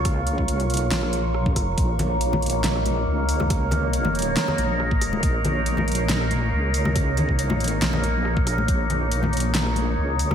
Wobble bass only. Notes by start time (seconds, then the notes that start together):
Already playing: C#2
0.52 C2
0.78 B1
0.91 A#1
1.78 A#1
3.07 C#2
4.58 A#1
5.23 A#1
6.52 C#2
7.82 A#1
8.68 A#1
9.98 C#2